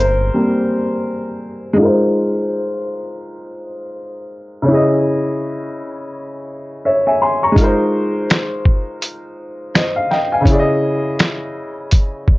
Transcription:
Already playing: A#3 C4 G4 G#4 A#4 C5
0.00 G1
0.34 G3 A#3 C4
1.73 G#3 D#4
1.79 F4 A#4
1.85 C5
4.62 C#3 C#4
4.68 E4 G#4
4.74 D#5
6.85 C#5 E5
7.07 E5 G#5
7.22 G#5 C6
7.43 A#5 C#6
7.52 G#3 D#4
7.56 F4, kick, closed hi-hat
7.61 A#4 C5
8.30 finger snap, snare, closed hi-hat
8.65 kick
9.02 closed hi-hat
9.75 C5 D#5, finger snap, snare, closed hi-hat
9.96 F5
10.11 D#5 G5, snare
10.32 F5 G#5
10.41 C#3 C#4
10.45 E4, kick, closed hi-hat
10.50 G#4 D5
10.59 D#5
11.19 finger snap, snare, closed hi-hat
11.91 kick, closed hi-hat
12.28 kick

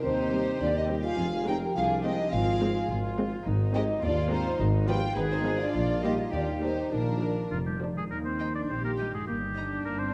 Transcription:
Already playing: D#4 G4 C5 D#5 G5 C6
0.02 D#2 D#3 C4 D#4 G4 C5
0.19 C4
0.32 G3 C4 G4
0.48 C5
0.59 D#2 D4 F4 D5 C6
0.74 D#4 D#5 G5
0.78 G4 D#5
0.89 G3 C4 C5
1.02 F4 G4 G#4 F5
1.18 F1 F2 F3 F4
1.34 C4
1.46 G#3 C4 D#4 G4 G#4 A#4 G5
1.62 C5
1.75 C2 D4 F4 G#4 F5 C6
1.91 G#5
2.04 G#3 C4 D#4 G4 C5 D#5
2.19 G#4
2.32 G#1 G#2 C4 F4 G#4 F5
2.47 C4
2.61 G#3 C4 G#4
2.76 C5
2.90 G#1 F4 C6
3.04 G#5
3.18 G#3 C4 C5
3.32 G#4
3.46 G#1 G#2 D#4
3.61 C4
3.74 G#3 C4 D#4 G4 G#4 D#5
3.89 C5
4.02 D#2 D4 F4 D5 D#6
4.18 G#5
4.31 G#3 C4 D#4 C5
4.46 D#5
4.59 G#1 G#2 D#4
4.75 B3
4.88 F3 B3 F4 G4 B4 G5
5.03 B4
5.16 G#1 B3 D#4 G#4 B4 D#6
5.30 C4 D#4 C5 F5
5.46 F3 B3 B4
5.59 D4 F4 D5 D#5
5.74 A#1 A#2 F4
5.90 G#3
6.03 G3 A#3 D#4 G4 D#5
6.19 G#4
6.33 D#2 D#3 D4 F4 G4 D5
6.48 D#4
6.62 G3 A#3 C4 D#4 A#4 C5
6.77 D#5
6.92 A#1 A#2 A#3 D4 A#4
7.08 F3
7.22 F3 D4
7.38 F4
7.51 F1 F3 F4 A#5
7.66 G3 G4 D5
7.81 F3 D4 F4
7.93 D#3 G#3 A#4
7.98 G3 G#4
8.02 D#4
8.07 A#4
8.11 D#2 A#3 A#4
8.25 C4 C5
8.39 D#4 D#5 G5
8.55 D4 D5
8.69 A#1 C4 G4 C5
8.84 A#3 A#4
8.98 G3 D#4 G4 D#5 G5
9.10 G2 G#3
9.14 A#3 G#4
9.19 D#4
9.24 G1 A#3 A#4
9.28 G3 G4
9.54 D4 D#4 D#5 A#5
9.85 G1 A#3 A#4
9.99 C4 C5

